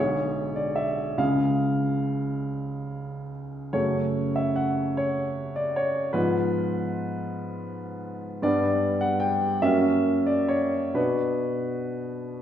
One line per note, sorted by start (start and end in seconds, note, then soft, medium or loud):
0.00 1.15 B1 soft
0.00 1.16 D3 soft
0.00 1.16 G#3 soft
0.00 1.16 G#4 soft
0.00 0.57 C#5 medium
0.56 0.77 D5 soft
0.76 1.19 E5 soft
1.18 3.69 C#2 soft
1.18 3.69 C#3 soft
1.18 3.69 G#3 soft
1.18 3.70 G#4 soft
1.18 3.29 F5 medium
3.73 6.11 F#2 soft
3.73 6.11 C#3 soft
3.73 6.11 A3 soft
3.73 6.12 F#4 soft
3.73 4.36 C#5 soft
4.36 4.57 E5 soft
4.56 4.97 F#5 soft
4.97 5.57 C#5 medium
5.56 5.76 D5 medium
5.76 6.15 C#5 soft
6.13 8.40 G#2 soft
6.13 8.40 F3 soft
6.13 8.41 B3 soft
6.13 8.41 F4 soft
6.13 8.44 B4 medium
8.42 9.59 G2 soft
8.42 9.60 G3 soft
8.42 9.60 B3 soft
8.42 9.60 D4 soft
8.42 9.02 D5 medium
9.01 9.22 F#5 medium
9.20 9.63 G5 medium
9.62 10.92 F#2 soft
9.62 10.92 A#3 soft
9.62 10.92 C#4 soft
9.62 10.93 F#4 soft
9.62 10.28 E5 medium
10.26 10.50 D5 medium
10.48 10.96 C#5 medium
10.94 12.42 B2 soft
10.94 12.42 B3 soft
10.94 12.42 D4 soft
10.94 12.42 F#4 soft
10.94 12.33 B4 soft